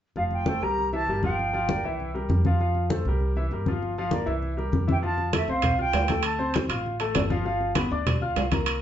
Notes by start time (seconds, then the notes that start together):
0.16 F1 F3 F4 F5, high conga
0.31 G5, high conga
0.46 A3 A4 C5, high conga
0.62 C2 G3 G4 A#4 A#5, high conga
0.78 high conga
0.93 E3 E4 E5 A5, high conga
1.07 G1 G3 G4 A#4, high conga
1.23 F3 F4 F5 G5, high conga
1.39 high conga
1.53 F3 F4 F5, high conga
1.69 A#3 A#4 D5, high conga
1.83 C2 E3 E4 E5
2.00 high conga
2.14 G3 G4 A#4, high conga
2.29 F2, high conga
2.45 F3 F4 F5, high conga
2.60 F3 F4 F5, high conga
2.75 high conga
2.90 A3 A4 C5, high conga
3.05 C2 G3 G4 A#4, high conga
3.20 high conga
3.36 E3 E4 E5, high conga
3.51 G1 G3 G4 A#4, high conga
3.66 F3 F4 F5, high conga
3.82 high conga
3.98 F3 F4 F5, high conga
4.11 A#3 A#4 D5, high conga
4.26 C2 E3 E4 E5
4.43 high conga
4.57 G3 G4 A#4, high conga
4.72 F2, high conga
4.87 E3 E4 E5, high conga
4.92 G5
5.02 F3 F4 F5 A5, high conga
5.18 high conga
5.33 A3 A4 E5 A5, high conga, high timbale
5.48 C2 C4 C5 F5 C6, high conga
5.62 high conga, low conga, high timbale
5.78 F4 F5 G5 F6, high conga
5.93 D2, high conga, high timbale, low timbale
6.08 A3 A4 A5, high conga, high timbale
6.23 A5, high conga, high timbale
6.39 C4 C5 C6, high conga
6.54 high conga, high timbale
6.69 A1 F4 F5 F6, high timbale
6.86 high conga
7.00 A3 A4 A5, high conga, high timbale
7.15 G1, high conga, high timbale, low timbale
7.30 F3 F4 F5, high conga
7.45 F3 F4 F5, high conga
7.61 high conga
7.75 B3 B4 B5, high conga, high timbale
7.91 D2 D4 D5 D6, high conga
8.07 high conga, low conga, high timbale
8.22 F4 F5 F6, high conga
8.36 C2, high conga, high timbale, low timbale
8.52 A#3 A#4 A#5, high conga, high timbale
8.66 high conga, high timbale